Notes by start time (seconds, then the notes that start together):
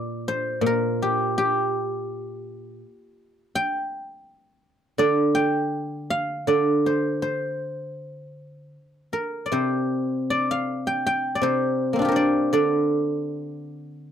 Already playing: A#2 A#4 D5
0.28 C5
0.61 A#2
0.66 A#4
1.02 G4
1.38 G4
3.55 G5
4.98 D3 D5
5.35 G5
6.10 F5
6.47 D3 D5
6.86 C5
7.22 C5
9.13 A#4
9.46 D5
9.52 C3 C5
10.30 D5
10.51 F5
10.87 G5
11.07 G5
11.35 D5
11.42 C3 C5
11.93 A#3 C4
11.99 D4 F4
12.05 G4 A#4
12.12 C5
12.16 D5
12.53 D3 D5